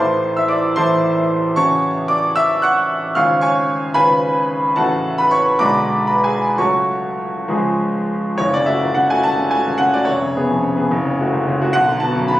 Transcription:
0.00 0.75 A1 medium
0.00 0.75 E3 soft
0.00 0.76 A3 soft
0.00 0.76 E4 soft
0.00 0.35 C5 medium
0.00 0.35 A5 medium
0.00 0.37 C6 medium
0.37 0.52 E5 medium
0.37 0.52 E6 medium
0.48 0.76 D5 medium
0.48 0.77 D6 medium
0.76 1.54 A1 medium
0.76 1.55 E3 soft
0.76 1.55 A3 soft
0.76 1.55 E4 soft
0.76 1.53 C5 medium
0.76 1.53 A5 medium
0.76 1.57 C6 medium
1.56 3.13 A1 medium
1.56 3.13 C#3 soft
1.56 3.13 C#4 soft
1.56 3.13 F#4 soft
1.56 2.07 C#5 medium
1.56 2.07 A5 medium
1.56 2.11 C#6 medium
2.08 2.35 D5 medium
2.08 2.37 D6 medium
2.36 2.62 E5 medium
2.36 2.63 E6 loud
2.62 3.13 F#5 medium
2.62 3.13 C#6 medium
2.62 3.16 F#6 medium
3.15 3.93 G#1 medium
3.15 3.93 C#3 medium
3.15 3.94 C#4 soft
3.15 3.94 F4 soft
3.15 3.42 F5 medium
3.15 3.40 C#6 medium
3.15 3.43 F6 medium
3.41 3.92 C#5 medium
3.41 3.92 G#5 medium
3.41 3.95 C#6 medium
3.94 4.75 G#1 medium
3.94 4.75 C#3 medium
3.94 4.76 C#4 medium
3.94 4.76 F4 medium
3.94 4.74 B4 medium
3.94 4.74 G#5 medium
3.94 4.78 B5 loud
4.76 5.59 A1 medium
4.76 5.59 C#3 soft
4.76 5.60 A3 medium
4.76 5.60 F#4 soft
4.76 5.17 A4 medium
4.76 5.17 F#5 medium
4.76 5.19 A5 medium
5.18 5.33 B4 medium
5.18 5.33 B5 medium
5.31 5.60 C#5 medium
5.31 5.61 C#6 medium
5.59 6.56 B1 medium
5.59 6.56 D3 medium
5.59 6.56 G#3 medium
5.59 6.57 F#4 medium
5.59 6.05 D5 medium
5.59 6.05 B5 medium
5.59 6.08 D6 medium
6.07 6.25 B4 medium
6.07 6.25 B5 medium
6.24 6.57 G#4 medium
6.24 6.59 G#5 medium
6.58 7.47 C#2 medium
6.58 7.47 F#3 soft
6.58 7.48 A3 soft
6.58 7.48 F#4 soft
6.58 8.07 C#5 medium
6.58 8.07 A5 soft
6.58 8.11 C#6 medium
7.48 8.37 C#2 medium
7.48 8.37 F3 soft
7.48 8.37 G#3 soft
7.48 8.37 G#4 soft
8.38 10.04 F#1 medium
8.38 8.53 C#5 medium
8.54 8.78 C#3 medium
8.54 8.68 D5 medium
8.66 8.81 A3 soft
8.66 8.81 F#4 soft
8.66 8.96 E5 medium
8.83 9.06 C#2 soft
8.94 9.20 C#3 soft
8.94 9.10 F#5 medium
9.10 9.24 A3 soft
9.10 9.25 F#4 medium
9.10 9.25 G#5 medium
9.23 9.48 C#2 medium
9.23 9.52 A5 medium
9.39 9.62 C#3 soft
9.51 9.65 A3 soft
9.51 9.66 F#4 soft
9.51 9.80 G#5 medium
9.67 9.89 C#2 soft
9.78 10.03 C#3 soft
9.78 9.93 F#5 medium
9.94 10.08 A3 soft
9.94 10.08 F#4 medium
9.94 10.08 D5 medium
10.05 10.89 F1 medium
10.05 11.74 C#5 medium
10.22 10.45 C#3 soft
10.37 10.49 B3 soft
10.37 10.49 G#4 medium
10.50 10.73 F2 soft
10.63 10.86 C#3 soft
10.77 10.90 B3 soft
10.77 10.90 G#4 soft
10.91 11.73 F#1 medium
11.05 11.28 C#3 medium
11.20 11.32 A3 soft
11.20 11.33 F#4 soft
11.32 11.55 C#2 medium
11.46 11.69 C#3 medium
11.61 11.74 A3 medium
11.61 11.74 F#4 medium
11.73 12.40 B1 medium
11.73 12.02 F#5 medium
11.88 12.11 D3 medium
12.00 12.15 B3 soft
12.00 12.15 F#4 medium
12.00 12.29 A5 medium
12.16 12.38 F#2 medium
12.28 12.40 D3 medium
12.28 12.40 B5 medium

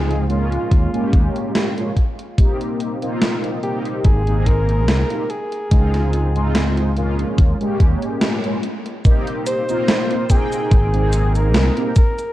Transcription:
0.00 0.56 C#2 medium
0.00 0.24 G#3 medium
0.00 0.25 C4 medium
0.00 0.25 D#4 medium
0.00 0.25 F4 loud
0.00 0.28 G#4 loud
0.11 closed hi-hat soft
0.28 0.88 G#3 medium
0.28 0.88 A#3 medium
0.28 0.88 C#4 medium
0.28 1.92 F4 medium
0.28 0.89 F4 medium
0.28 closed hi-hat soft
0.52 closed hi-hat soft
0.71 0.86 D#2 medium
0.71 kick loud
0.71 closed hi-hat medium
0.93 1.71 G#3 medium
0.93 1.72 A#3 medium
0.93 1.72 C#4 medium
0.93 1.72 G4 loud
0.93 closed hi-hat soft
1.13 1.27 D#2 medium
1.13 kick loud
1.13 closed hi-hat medium
1.36 closed hi-hat soft
1.55 snare loud
1.55 closed hi-hat medium
1.77 1.90 G#3 medium
1.77 1.90 A#3 medium
1.77 1.91 C#4 medium
1.77 1.91 F4 medium
1.77 closed hi-hat soft
1.97 kick medium
1.97 closed hi-hat medium
2.19 closed hi-hat soft
2.37 2.96 A#3 medium
2.37 2.97 C4 medium
2.37 2.97 D#4 medium
2.37 2.97 G4 medium
2.37 kick loud
2.37 closed hi-hat medium
2.61 closed hi-hat soft
2.80 closed hi-hat medium
3.01 3.58 A#3 loud
3.01 3.58 C4 medium
3.01 3.59 D#4 medium
3.01 3.59 F4 loud
3.01 closed hi-hat soft
3.22 snare loud
3.22 closed hi-hat medium
3.44 closed hi-hat soft
3.62 4.21 A#3 medium
3.62 4.22 C4 medium
3.62 4.22 D#4 medium
3.62 3.79 G4 medium
3.62 4.22 G4 medium
3.62 closed hi-hat soft
3.85 closed hi-hat soft
4.04 4.88 G#1 medium
4.04 4.49 G#4 loud
4.04 kick loud
4.04 closed hi-hat medium
4.27 5.05 A#3 medium
4.27 5.05 C4 medium
4.27 5.05 D#4 medium
4.27 5.06 G#4 loud
4.27 closed hi-hat soft
4.46 5.32 A#4 loud
4.46 kick medium
4.46 closed hi-hat medium
4.69 closed hi-hat soft
4.88 5.02 C2 loud
4.88 snare loud
4.88 closed hi-hat medium
5.10 5.23 A#3 medium
5.10 5.24 C4 medium
5.10 5.24 D#4 medium
5.10 5.24 G4 medium
5.10 closed hi-hat soft
5.30 6.97 G#4 loud
5.30 closed hi-hat medium
5.52 closed hi-hat soft
5.71 7.23 C#2 medium
5.71 6.30 G#3 medium
5.71 6.30 C4 medium
5.71 6.30 D#4 medium
5.71 6.31 F4 medium
5.71 kick loud
5.71 closed hi-hat medium
5.94 snare soft
5.94 closed hi-hat soft
6.13 closed hi-hat medium
6.34 6.91 G#3 loud
6.34 6.91 C4 medium
6.34 6.92 D#4 medium
6.34 6.92 F4 loud
6.34 closed hi-hat soft
6.55 snare loud
6.55 closed hi-hat medium
6.77 closed hi-hat soft
6.96 7.55 G#3 medium
6.96 7.55 A#3 medium
6.96 7.55 C#4 medium
6.96 7.56 F4 loud
6.96 closed hi-hat soft
7.19 closed hi-hat soft
7.38 7.52 D#2 medium
7.38 kick loud
7.38 closed hi-hat medium
7.60 8.38 G#3 loud
7.60 8.38 A#3 medium
7.60 8.39 C#4 medium
7.60 8.39 G4 loud
7.60 closed hi-hat soft
7.80 7.94 D#2 medium
7.80 kick loud
7.80 closed hi-hat medium
8.02 closed hi-hat soft
8.21 snare loud
8.21 closed hi-hat medium
8.43 8.57 G#3 medium
8.43 8.57 A#3 medium
8.43 8.57 C#4 medium
8.43 8.57 F4 medium
8.43 closed hi-hat soft
8.63 closed hi-hat medium
8.86 closed hi-hat soft
9.04 9.63 A#3 medium
9.04 9.63 C4 medium
9.04 9.64 D#4 medium
9.04 9.64 G4 medium
9.04 kick loud
9.04 closed hi-hat medium
9.04 cabasa soft
9.27 closed hi-hat soft
9.46 10.32 C5 loud
9.46 closed hi-hat loud
9.46 cabasa medium
9.68 10.25 A#3 loud
9.68 10.25 C4 medium
9.68 10.25 D#4 medium
9.68 10.26 F4 loud
9.68 closed hi-hat soft
9.68 cabasa soft
9.88 snare loud
9.88 closed hi-hat medium
9.88 cabasa soft
10.11 closed hi-hat soft
10.29 10.88 A#3 medium
10.29 10.88 C4 medium
10.29 10.89 D#4 medium
10.29 11.38 G#4 loud
10.29 10.89 G5 loud
10.29 kick medium
10.29 closed hi-hat loud
10.29 cabasa medium
10.52 closed hi-hat soft
10.52 cabasa soft
10.71 11.55 G#1 loud
10.71 kick loud
10.71 closed hi-hat medium
10.71 cabasa soft
10.93 11.71 A#3 medium
10.93 11.72 C4 medium
10.93 11.72 D#4 medium
10.93 11.72 G#4 loud
10.93 closed hi-hat soft
11.13 closed hi-hat medium
11.13 cabasa medium
11.35 11.97 A#4 loud
11.35 closed hi-hat soft
11.35 cabasa soft
11.54 11.69 C2 loud
11.54 snare loud
11.54 closed hi-hat medium
11.54 cabasa soft
11.76 11.90 A#3 medium
11.76 11.90 C4 medium
11.76 11.90 D#4 medium
11.76 11.90 G4 medium
11.76 closed hi-hat soft
11.96 12.33 A#4 loud
11.96 kick loud
11.96 closed hi-hat medium
11.96 cabasa medium
12.19 closed hi-hat soft
12.19 cabasa soft

